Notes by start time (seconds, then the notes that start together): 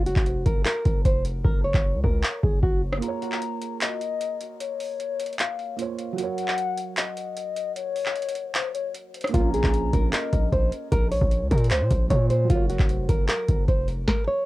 Already playing: F#1
0.06 F#4, closed hi-hat
0.16 F1, kick, clap
0.26 closed hi-hat
0.46 F#1 A#4, kick, closed hi-hat
0.66 A#4, clap, closed hi-hat
0.85 F#1, kick, closed hi-hat
1.05 F1 C5, kick, closed hi-hat
1.25 closed hi-hat
1.44 F#1 A#4, kick
1.64 C#5
1.74 F#1, kick, clap
1.94 C#2
2.04 C#2 A#4, kick
2.23 clap
2.43 F#1 G#4, kick
2.63 F#1 F#4, kick
2.93 cross-stick
2.98 A#3 F4
3.02 A#4 A#5, closed hi-hat
3.08 C#5
3.22 closed hi-hat
3.32 clap
3.42 closed hi-hat
3.62 closed hi-hat
3.81 D#5, clap, closed hi-hat
4.01 closed hi-hat
4.21 closed hi-hat
4.41 closed hi-hat
4.60 C#5, closed hi-hat
4.80 open hi-hat
5.00 closed hi-hat
5.19 closed hi-hat
5.26 closed hi-hat
5.33 closed hi-hat
5.39 F5, clap, closed hi-hat
5.59 closed hi-hat
5.76 A#3 F4 C5, closed hi-hat
5.82 C#5
5.99 closed hi-hat
6.13 F#3 F#4
6.18 A#4 F#5, closed hi-hat
6.23 C#5
6.38 closed hi-hat
6.48 clap
6.58 closed hi-hat
6.77 closed hi-hat
6.97 D#5, clap, closed hi-hat
7.17 closed hi-hat
7.37 closed hi-hat
7.56 closed hi-hat
7.76 C#5, closed hi-hat
7.96 open hi-hat
8.06 clap
8.16 closed hi-hat
8.22 closed hi-hat
8.29 closed hi-hat
8.35 closed hi-hat
8.55 C5, clap, closed hi-hat
8.75 C#5, closed hi-hat
8.95 closed hi-hat
9.14 closed hi-hat
9.21 cross-stick, closed hi-hat
9.27 A#3, closed hi-hat
9.33 A#1 F4 A#4 A#5, kick, closed hi-hat
9.40 C#4
9.54 G#4, closed hi-hat
9.64 A#1, kick, clap
9.74 closed hi-hat
9.93 A#1 A#4, kick, closed hi-hat
10.13 A#4 D#5, clap, closed hi-hat
10.33 A#1, kick, closed hi-hat
10.52 A#1 C5, kick, closed hi-hat
10.72 closed hi-hat
10.92 A#1 A#4, kick, closed hi-hat
11.12 C#5, open hi-hat
11.21 A#1, kick
11.31 closed hi-hat
11.41 C#2
11.51 A#2 A#4, kick, closed hi-hat
11.58 closed hi-hat
11.64 closed hi-hat
11.71 C#2 C5, clap, closed hi-hat
11.81 A#2
11.91 A#1, kick, closed hi-hat
12.08 A#2 A#3 F4 C5 C#5, kick, closed hi-hat
12.13 C#5
12.30 C5, closed hi-hat
12.44 F#3 F#4
12.50 F#1 F4 A#4, kick, closed hi-hat
12.55 C#5
12.70 F#4, closed hi-hat
12.79 F1, kick, clap
12.89 closed hi-hat
13.09 F#1 A#4, kick, closed hi-hat
13.29 A#4, clap, closed hi-hat
13.48 F#1, kick, closed hi-hat
13.68 F1 C5, kick, closed hi-hat
13.88 closed hi-hat
14.08 A#4, kick, snare
14.27 C#5